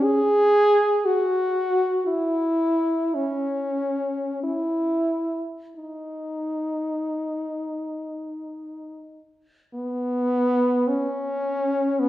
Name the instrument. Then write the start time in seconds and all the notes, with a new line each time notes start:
french horn
0.03 G#4
1.05 F#4
2.07 E4
3.14 C#4
4.44 E4
5.76 D#4
9.74 B3
10.88 C#4
11.99 B3